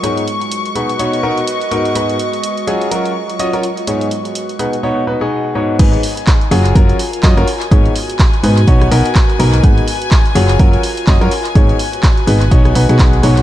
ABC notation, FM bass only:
X:1
M:4/4
L:1/16
Q:"Swing 16ths" 1/4=125
K:G#dor
V:1 name="FM bass" clef=bass
z16 | z16 | z16 | G,,, z4 z F,,,2 F,,, z3 F,, F,,, z2 |
G,,, z4 z G,,2 B,,,2 B,,, z3 B,,,2 | G,,, z4 z F,,,2 F,,, z3 F,,, F,, z2 | G,,, z4 z G,,,2 B,,,2 B,,, B,,,3 B,,,2 |]